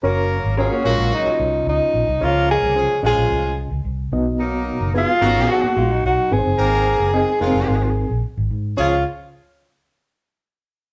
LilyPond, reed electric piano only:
<<
  \new Staff \with { instrumentName = "Reed electric piano" } { \time 4/4 \key des \major \tempo 4 = 110 <des' ges' bes' des''>8 r8 <des' ges' bes' des''>8 <des' ges' bes' des''>4 r4. | <des' f' aes' des''>8 r8 <des' f' aes' c''>8 <des' f' aes' ees''>4 r4 <ces' ees' ges' ees''>8~ | <ces' ees' ges' ees''>8 r8 <ces' ees' ges' ces''>8 <ces' ees' ges' aes'>4 r4 <c' ees' aes' ces'' c''>8~ | <c' ees' aes' ces'' c''>8 r8 <c' ees' aes' ees''>8 <bes c' ees' aes' bes'>4 r4. |
<des' f' aes' des''>8 r2. r8 | }
  \new Staff \with { instrumentName = "Reed electric piano" } { \clef bass \time 4/4 \key des \major r1 | des4. r2 ces8~ | ces4 r2 r8 aes,8~ | aes,4 r2. |
des,8 r2. r8 | }
>>